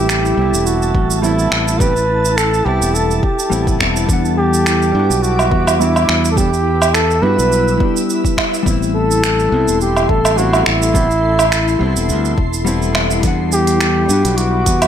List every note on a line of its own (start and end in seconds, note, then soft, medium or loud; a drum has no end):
0.00 0.34 A1 loud
0.00 0.33 G3 medium
0.00 0.34 B3 medium
0.00 0.35 C4 medium
0.00 0.37 E4 medium
0.00 4.05 E4 medium
0.00 0.68 G4 medium
0.00 4.05 A4 medium
0.00 4.05 A5 medium
0.09 finger snap medium
0.09 shaker medium
0.25 shaker soft
0.34 0.51 C2 medium
0.34 1.19 G3 medium
0.34 1.20 B3 medium
0.39 1.21 C4 medium
0.39 1.22 E4 medium
0.53 0.91 E1 medium
0.53 shaker medium
0.66 1.21 F#4 medium
0.66 shaker medium
0.82 shaker soft
0.94 1.48 A1 loud
0.94 kick loud
1.11 shaker medium
1.22 1.77 G3 medium
1.22 1.77 B3 medium
1.22 1.78 C4 medium
1.22 1.81 E4 medium
1.22 shaker medium
1.26 1.79 E4 medium
1.39 shaker soft
1.52 2.63 A1 medium
1.52 finger snap medium
1.68 shaker medium
1.79 1.91 G3 medium
1.79 1.92 B3 medium
1.79 1.92 C4 medium
1.79 1.93 G4 loud
1.79 2.38 B4 loud
1.79 kick loud
1.79 shaker medium
1.97 shaker soft
2.25 shaker medium
2.37 2.67 A4 loud
2.37 finger snap medium
2.37 shaker medium
2.54 shaker soft
2.65 2.79 C2 medium
2.65 3.20 G3 medium
2.65 3.20 B3 medium
2.65 3.21 C4 medium
2.65 3.21 E4 medium
2.65 2.96 G4 medium
2.81 3.20 E1 medium
2.81 shaker medium
2.95 3.17 A4 medium
2.95 shaker medium
3.11 shaker soft
3.17 3.24 A4 medium
3.23 3.80 G4 medium
3.23 kick loud
3.39 shaker medium
3.50 3.76 A1 medium
3.50 3.76 G3 medium
3.50 3.77 B3 medium
3.50 3.78 C4 medium
3.50 3.78 E4 medium
3.50 shaker soft
3.67 kick medium
3.67 shaker soft
3.79 4.05 E1 medium
3.79 4.05 G3 medium
3.79 4.06 B3 medium
3.79 4.06 C4 medium
3.79 4.07 E4 medium
3.79 finger snap medium
3.79 kick medium
3.96 shaker medium
4.06 4.91 E2 medium
4.06 4.90 G3 medium
4.06 4.91 B3 medium
4.06 8.62 E4 medium
4.06 8.62 B4 medium
4.06 6.35 D6 medium
4.06 kick loud
4.06 shaker medium
4.10 4.92 D4 medium
4.10 4.94 F#5 loud
4.25 shaker soft
4.38 5.24 G4 medium
4.54 shaker medium
4.66 finger snap medium
4.66 shaker medium
4.82 shaker soft
4.92 5.08 G2 medium
4.92 5.76 G3 medium
4.92 5.77 B3 medium
4.97 5.79 D4 medium
4.97 5.80 F#4 medium
5.10 5.48 B1 medium
5.10 shaker medium
5.23 5.82 F#4 medium
5.23 shaker soft
5.39 low woodblock medium
5.39 shaker soft
5.51 6.06 E2 medium
5.51 kick medium
5.67 low woodblock medium
5.67 shaker medium
5.79 6.34 G3 medium
5.79 6.35 B3 medium
5.79 6.35 D4 medium
5.79 6.31 E4 medium
5.79 6.36 F#4 medium
5.79 shaker medium
5.96 low woodblock medium
5.96 shaker soft
6.09 7.20 E2 medium
6.09 finger snap medium
6.25 shaker medium
6.32 6.48 G3 medium
6.32 6.39 A4 medium
6.37 6.49 B3 medium
6.37 6.50 D4 medium
6.37 6.96 G4 loud
6.37 6.50 A4 medium
6.37 8.64 E6 medium
6.37 kick loud
6.37 shaker medium
6.53 shaker soft
6.82 low woodblock medium
6.82 shaker medium
6.94 7.24 A4 loud
6.94 finger snap medium
6.94 shaker soft
7.11 shaker soft
7.22 7.36 G2 medium
7.22 7.76 G3 medium
7.22 7.77 B3 medium
7.22 7.78 D4 medium
7.22 7.78 F#4 medium
7.22 8.09 B4 loud
7.39 7.77 B1 medium
7.39 shaker medium
7.52 shaker soft
7.68 shaker soft
7.77 8.62 G3 medium
7.77 8.63 B3 medium
7.77 kick medium
7.83 8.64 D4 medium
7.83 8.65 G4 medium
7.97 shaker medium
8.10 shaker soft
8.25 kick medium
8.25 shaker soft
8.38 finger snap medium
8.38 kick medium
8.38 low woodblock medium
8.54 shaker medium
8.63 9.49 A1 loud
8.63 9.47 G3 medium
8.63 9.48 B3 medium
8.63 13.19 E4 medium
8.63 13.19 A4 medium
8.63 13.20 C6 medium
8.63 kick loud
8.67 9.50 C4 medium
8.67 9.51 E4 loud
8.67 shaker soft
8.83 shaker soft
8.95 9.77 A4 loud
9.11 shaker medium
9.24 finger snap medium
9.24 shaker soft
9.39 shaker soft
9.49 9.65 C2 medium
9.49 10.33 G3 medium
9.49 10.34 B3 medium
9.54 10.35 C4 medium
9.54 10.37 E4 medium
9.68 10.06 E1 medium
9.68 shaker medium
9.81 10.11 G4 medium
9.81 shaker soft
9.97 low woodblock medium
9.97 shaker soft
10.09 10.63 A1 loud
10.09 10.39 A4 medium
10.09 kick loud
10.25 low woodblock medium
10.25 shaker medium
10.36 10.91 G3 medium
10.36 10.92 B3 medium
10.36 10.92 C4 medium
10.36 10.93 E4 medium
10.36 10.66 F#4 loud
10.36 shaker soft
10.53 low woodblock medium
10.53 shaker soft
10.66 11.78 A1 medium
10.66 12.62 E4 loud
10.66 finger snap medium
10.82 shaker medium
10.93 11.06 G3 medium
10.93 11.06 B3 medium
10.93 11.07 C4 medium
10.93 11.07 G4 loud
10.93 kick loud
10.93 shaker medium
11.11 shaker soft
11.39 low woodblock medium
11.39 shaker medium
11.52 finger snap medium
11.52 shaker soft
11.68 shaker soft
11.79 11.94 C2 medium
11.79 12.34 G3 medium
11.79 12.34 B3 medium
11.79 12.35 C4 medium
11.79 12.36 E4 medium
11.96 12.10 E1 medium
11.96 shaker medium
12.09 12.34 D2 medium
12.09 shaker soft
12.25 shaker soft
12.38 13.20 E1 medium
12.38 kick loud
12.53 shaker medium
12.65 12.91 G3 medium
12.65 12.91 B3 medium
12.65 12.92 C4 medium
12.65 12.93 E4 loud
12.65 shaker soft
12.82 shaker soft
12.93 13.19 G3 medium
12.93 13.20 B3 medium
12.93 13.21 C4 medium
12.93 13.21 E4 medium
12.93 finger snap medium
12.93 low woodblock medium
13.11 shaker medium
13.20 14.06 E2 loud
13.20 14.04 G3 medium
13.20 14.05 B3 medium
13.20 14.87 E4 medium
13.20 14.87 B4 medium
13.20 14.87 D6 medium
13.20 kick loud
13.20 closed hi-hat medium
13.20 shaker soft
13.25 14.07 D4 medium
13.25 14.08 F#5 loud
13.52 14.38 G4 loud
13.52 shaker medium
13.67 closed hi-hat soft
13.67 shaker soft
13.81 finger snap medium
13.81 closed hi-hat medium
13.81 shaker soft
14.06 14.22 G2 medium
14.06 14.87 G3 medium
14.06 14.87 B3 medium
14.06 shaker medium
14.11 14.87 D4 medium
14.11 14.87 F#4 medium
14.25 14.63 B1 medium
14.25 closed hi-hat soft
14.25 shaker soft
14.37 14.87 F#4 medium
14.37 closed hi-hat medium
14.37 shaker soft
14.66 14.87 E2 loud
14.66 kick loud
14.66 closed hi-hat medium
14.66 shaker medium
14.82 closed hi-hat soft
14.82 low woodblock medium
14.82 shaker soft